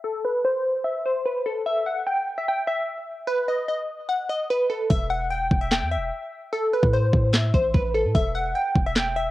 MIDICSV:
0, 0, Header, 1, 4, 480
1, 0, Start_track
1, 0, Key_signature, 1, "minor"
1, 0, Tempo, 405405
1, 46, Time_signature, 4, 2, 24, 8
1, 11021, End_track
2, 0, Start_track
2, 0, Title_t, "Synth pluck"
2, 0, Program_c, 0, 84
2, 49, Note_on_c, 0, 69, 87
2, 231, Note_off_c, 0, 69, 0
2, 294, Note_on_c, 0, 71, 75
2, 473, Note_off_c, 0, 71, 0
2, 530, Note_on_c, 0, 72, 83
2, 980, Note_off_c, 0, 72, 0
2, 997, Note_on_c, 0, 76, 83
2, 1183, Note_off_c, 0, 76, 0
2, 1247, Note_on_c, 0, 72, 82
2, 1429, Note_off_c, 0, 72, 0
2, 1483, Note_on_c, 0, 71, 81
2, 1666, Note_off_c, 0, 71, 0
2, 1724, Note_on_c, 0, 69, 84
2, 1907, Note_off_c, 0, 69, 0
2, 1964, Note_on_c, 0, 76, 106
2, 2148, Note_off_c, 0, 76, 0
2, 2204, Note_on_c, 0, 78, 84
2, 2387, Note_off_c, 0, 78, 0
2, 2445, Note_on_c, 0, 79, 81
2, 2784, Note_off_c, 0, 79, 0
2, 2815, Note_on_c, 0, 76, 78
2, 2903, Note_off_c, 0, 76, 0
2, 2940, Note_on_c, 0, 79, 84
2, 3117, Note_off_c, 0, 79, 0
2, 3165, Note_on_c, 0, 76, 90
2, 3843, Note_off_c, 0, 76, 0
2, 3877, Note_on_c, 0, 71, 92
2, 4063, Note_off_c, 0, 71, 0
2, 4124, Note_on_c, 0, 75, 79
2, 4307, Note_off_c, 0, 75, 0
2, 4364, Note_on_c, 0, 75, 77
2, 4816, Note_off_c, 0, 75, 0
2, 4841, Note_on_c, 0, 78, 87
2, 5025, Note_off_c, 0, 78, 0
2, 5083, Note_on_c, 0, 75, 85
2, 5267, Note_off_c, 0, 75, 0
2, 5330, Note_on_c, 0, 71, 85
2, 5511, Note_off_c, 0, 71, 0
2, 5561, Note_on_c, 0, 69, 82
2, 5745, Note_off_c, 0, 69, 0
2, 5802, Note_on_c, 0, 76, 107
2, 5986, Note_off_c, 0, 76, 0
2, 6040, Note_on_c, 0, 78, 90
2, 6225, Note_off_c, 0, 78, 0
2, 6281, Note_on_c, 0, 79, 84
2, 6622, Note_off_c, 0, 79, 0
2, 6644, Note_on_c, 0, 76, 80
2, 6736, Note_off_c, 0, 76, 0
2, 6771, Note_on_c, 0, 79, 88
2, 6952, Note_off_c, 0, 79, 0
2, 7003, Note_on_c, 0, 76, 84
2, 7681, Note_off_c, 0, 76, 0
2, 7730, Note_on_c, 0, 69, 87
2, 7911, Note_off_c, 0, 69, 0
2, 7975, Note_on_c, 0, 71, 78
2, 8154, Note_off_c, 0, 71, 0
2, 8210, Note_on_c, 0, 72, 83
2, 8660, Note_off_c, 0, 72, 0
2, 8676, Note_on_c, 0, 76, 85
2, 8862, Note_off_c, 0, 76, 0
2, 8927, Note_on_c, 0, 72, 83
2, 9109, Note_off_c, 0, 72, 0
2, 9163, Note_on_c, 0, 71, 82
2, 9347, Note_off_c, 0, 71, 0
2, 9404, Note_on_c, 0, 69, 83
2, 9587, Note_off_c, 0, 69, 0
2, 9644, Note_on_c, 0, 76, 106
2, 9827, Note_off_c, 0, 76, 0
2, 9884, Note_on_c, 0, 78, 85
2, 10067, Note_off_c, 0, 78, 0
2, 10124, Note_on_c, 0, 79, 84
2, 10464, Note_off_c, 0, 79, 0
2, 10495, Note_on_c, 0, 76, 81
2, 10583, Note_off_c, 0, 76, 0
2, 10619, Note_on_c, 0, 79, 83
2, 10797, Note_off_c, 0, 79, 0
2, 10847, Note_on_c, 0, 76, 89
2, 11021, Note_off_c, 0, 76, 0
2, 11021, End_track
3, 0, Start_track
3, 0, Title_t, "808-style bass"
3, 0, Program_c, 1, 38
3, 5807, Note_on_c, 1, 28, 110
3, 6498, Note_off_c, 1, 28, 0
3, 6526, Note_on_c, 1, 28, 111
3, 6887, Note_on_c, 1, 40, 92
3, 6905, Note_off_c, 1, 28, 0
3, 7067, Note_on_c, 1, 28, 105
3, 7085, Note_off_c, 1, 40, 0
3, 7238, Note_off_c, 1, 28, 0
3, 8087, Note_on_c, 1, 45, 106
3, 8433, Note_off_c, 1, 45, 0
3, 8446, Note_on_c, 1, 45, 104
3, 8907, Note_off_c, 1, 45, 0
3, 8926, Note_on_c, 1, 33, 107
3, 9157, Note_off_c, 1, 33, 0
3, 9167, Note_on_c, 1, 33, 107
3, 9526, Note_on_c, 1, 45, 96
3, 9544, Note_off_c, 1, 33, 0
3, 9640, Note_off_c, 1, 45, 0
3, 9647, Note_on_c, 1, 28, 107
3, 10108, Note_off_c, 1, 28, 0
3, 10366, Note_on_c, 1, 28, 111
3, 11021, Note_off_c, 1, 28, 0
3, 11021, End_track
4, 0, Start_track
4, 0, Title_t, "Drums"
4, 5807, Note_on_c, 9, 36, 106
4, 5925, Note_off_c, 9, 36, 0
4, 6526, Note_on_c, 9, 36, 91
4, 6644, Note_off_c, 9, 36, 0
4, 6766, Note_on_c, 9, 38, 117
4, 6772, Note_on_c, 9, 39, 90
4, 6885, Note_off_c, 9, 38, 0
4, 6891, Note_off_c, 9, 39, 0
4, 8087, Note_on_c, 9, 36, 91
4, 8206, Note_off_c, 9, 36, 0
4, 8446, Note_on_c, 9, 36, 97
4, 8564, Note_off_c, 9, 36, 0
4, 8687, Note_on_c, 9, 38, 114
4, 8693, Note_on_c, 9, 39, 91
4, 8805, Note_off_c, 9, 38, 0
4, 8811, Note_off_c, 9, 39, 0
4, 8927, Note_on_c, 9, 36, 87
4, 9045, Note_off_c, 9, 36, 0
4, 9168, Note_on_c, 9, 36, 94
4, 9286, Note_off_c, 9, 36, 0
4, 9647, Note_on_c, 9, 36, 100
4, 9765, Note_off_c, 9, 36, 0
4, 10366, Note_on_c, 9, 36, 96
4, 10484, Note_off_c, 9, 36, 0
4, 10607, Note_on_c, 9, 38, 115
4, 10613, Note_on_c, 9, 39, 93
4, 10725, Note_off_c, 9, 38, 0
4, 10731, Note_off_c, 9, 39, 0
4, 11021, End_track
0, 0, End_of_file